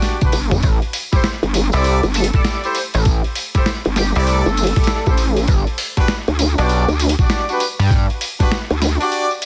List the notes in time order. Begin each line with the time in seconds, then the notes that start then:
Already playing: D4 F#4 G4 D5
0.02 snare, open hi-hat, tambourine
0.21 D4 F#4 G4 B4, kick, open hi-hat, high tom, tambourine
0.32 G1, open hi-hat, tambourine
0.51 mid tom, open hi-hat, tambourine
0.63 A1, kick, open hi-hat, tambourine
0.82 open hi-hat
0.93 open hi-hat, tambourine
1.13 E4 G4 A4 C5, kick, snare, open hi-hat, tambourine
1.24 snare, open hi-hat, tambourine
1.43 G1, open hi-hat
1.54 open hi-hat, tambourine
1.72 C2 E4 G4 A4 D5, open hi-hat, tambourine
1.84 open hi-hat, tambourine
2.03 G1, open hi-hat, tambourine
2.14 A4, open hi-hat, tambourine
2.24 closed hi-hat
2.33 E4 G4 A4 D5, kick, open hi-hat, tambourine
2.45 snare, open hi-hat, tambourine
2.64 E4 G4 A4 C5, open hi-hat, tambourine
2.75 open hi-hat, tambourine
2.94 A1, open hi-hat, tambourine
3.05 kick, open hi-hat, tambourine
3.24 open hi-hat
3.35 open hi-hat, tambourine
3.55 E4 G4 A4 C5, kick, snare, open hi-hat, tambourine
3.66 snare, open hi-hat, tambourine
3.85 G1, open hi-hat
3.96 G4, snare, open hi-hat, tambourine
4.16 C2 E4 G4 A4 D5, open hi-hat, tambourine
4.27 A4, open hi-hat, tambourine
4.46 G1, open hi-hat, tambourine
4.57 open hi-hat, tambourine
4.63 closed hi-hat, open hi-hat
4.67 open hi-hat
4.76 E4 G4 A4 D5, kick, snare, open hi-hat, tambourine
4.84 snare, open hi-hat
4.87 open hi-hat, tambourine
5.06 A1 E4 G4 A4 C5, kick, open hi-hat, tambourine
5.17 open hi-hat, tambourine
5.36 open hi-hat, tambourine
5.48 G1, kick, open hi-hat, tambourine
5.67 open hi-hat
5.78 open hi-hat, tambourine
5.97 D4 F#4 G4 B4, kick, snare, open hi-hat, tambourine
6.08 snare, open hi-hat, tambourine
6.28 D2, open hi-hat
6.39 open hi-hat, tambourine
6.58 B1 D4 F#4 G4 D5, open hi-hat, tambourine
6.69 open hi-hat, tambourine
6.88 D2, open hi-hat, tambourine
7.00 open hi-hat, tambourine
7.09 closed hi-hat
7.19 D4 F#4 G4 D5, kick, open hi-hat, tambourine
7.30 snare, open hi-hat, tambourine
7.49 D4 F#4 G4 B4, open hi-hat, tambourine
7.60 open hi-hat, tambourine
7.79 G2, open hi-hat, tambourine
7.91 kick, open hi-hat, tambourine
8.10 open hi-hat
8.21 open hi-hat, tambourine
8.40 D4 F#4 G4 B4, kick, snare, open hi-hat, tambourine
8.51 snare, open hi-hat, tambourine
8.70 D2, open hi-hat
8.82 snare, open hi-hat, tambourine
9.01 D4 F#4 G4 D5, open hi-hat, tambourine
9.12 open hi-hat, tambourine
9.31 open hi-hat, tambourine
9.42 open hi-hat, tambourine